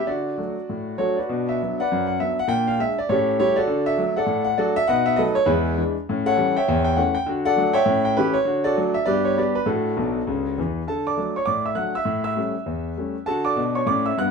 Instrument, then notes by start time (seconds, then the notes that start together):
grand piano
0.07 D3 F#4 D5
0.38 F#3 A3 D4
0.69 A2
0.98 F#3 A3 D4 F#4 A4 C#5
1.17 F#4 B4 D5
1.29 B2 D4
1.49 E5
1.62 F#3 B3 D4
1.80 B4 D5 F#5
1.92 F#2
2.07 F#5
2.20 F#3 B3 D4 E5
2.39 F#5
2.48 A#2 D4 G5
2.67 F5
2.79 G#3 D4 E5
2.99 D5
3.09 A2 C#4 G4 A4 C#5
3.39 G3 A3 E4 G4 A4 C#5
3.56 F#4 A4 D5
3.67 D3 F#4
3.86 E5
3.98 F#3 A3 D4
4.16 A4 D5 F#5
4.26 A2
4.44 F#5
4.57 F#3 A3 D4 F#4 A4 D5
4.76 E5
4.88 B2 D#4 B4 D#5 F#5
5.06 E5
5.16 F#3 A3 D#4 A4 B4 D#5
5.35 C#5
5.46 E2 G#3 E4 G#4 B4
5.77 E3 G#3 D4
6.09 A2 C#4
6.26 A4 C#5 F#5
6.36 E3 G3 C#4
6.57 C#5 E5 G5
6.68 E2
6.85 G5
6.96 E3 A3 C#4 F#5
7.15 G5
7.26 D3 F#4
7.45 A4 D5 F#5
7.56 F#3 A3 D4
7.73 C#5 E5 G5
7.86 A2 C#4
8.05 G5
8.17 E3 A3 C#4 E4 G4 B4
8.34 C#5
8.45 D3 F#4
8.64 F#4 A4 D5
8.77 F#3 A3 D4
8.94 E5
9.06 G2 B3 G4 B4 D5
9.25 C#5
9.38 G3 B3 D4 G4 B4 D5
9.55 B4
9.66 A2 D4 F#4 A4
9.97 B1 B2
10.27 C#2 C#3
10.58 E2 E3
10.87 D3 A4 A5
11.07 D5 D6
11.17 F#3 A3 D4
11.36 C#5 C#6
11.46 A2 D5 D6
11.66 E5 E6
11.75 F#3 A3 D4 F#5 F#6
11.95 E5 E6
12.05 A2
12.24 E5 E6
12.37 G3 A3 C#4
12.66 E2
12.97 G3 A3 C#4
13.26 D3 F#4 A4 A5
13.45 D5 D6
13.56 B2 D4
13.75 C#5 C#6
13.86 A2 C#4 D5 D6
14.06 E5 E6
14.17 G2 B3 F#5 F#6